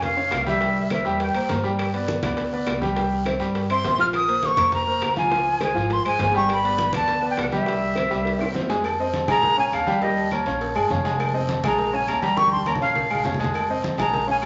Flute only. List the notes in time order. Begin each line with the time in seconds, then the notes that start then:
0.04 F5
0.48 E5
0.93 E5
1.23 G5
3.71 C6
4.00 F6
4.15 D#6
4.46 C#6
4.75 A#5
5.18 G#5
5.64 G#5
5.93 C6
6.07 G#5
6.37 C#6
6.52 B5
6.96 A5
7.31 G5
7.41 F#5
7.55 E5
9.30 A#5
9.59 G#5
9.73 F5
10.02 D#5
11.67 A#5
11.95 G#5
12.08 A#5
12.23 A#5
12.37 C#6
12.52 C6
12.67 A#5
12.82 F5
14.00 A#5
14.31 G#5